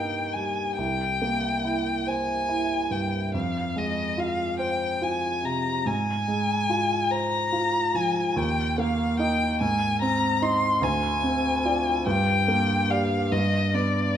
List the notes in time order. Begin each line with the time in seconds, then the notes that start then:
Already playing: G2 A#3 D#4 A#4 G5
0.33 G3 G#5
0.77 C2 G5
1.22 A#3
1.65 E4
2.07 C5 G#5
2.49 E4
2.90 G2 G5
3.34 F2 F5
3.76 G#3 D#5
4.17 F4 F5
4.59 C5 G5
5.02 F4 G#5
5.43 C3 A#5
5.86 G#2 G#5
6.28 G#3
6.70 F4
7.10 C5 A#5
7.52 F4
7.94 F3 G#5
8.36 D#2 G5
8.78 A#3 F5
9.19 D#4 D#5 G5
9.61 G#2 G#5
10.02 C4 A#5
10.42 D#4 D#5 C6
10.82 D2 G#5
11.23 C4
11.65 F4 D5
12.06 G2 G5
12.48 A#3
12.90 G4 D5 F5
13.32 G2 D#5
13.74 B3 D5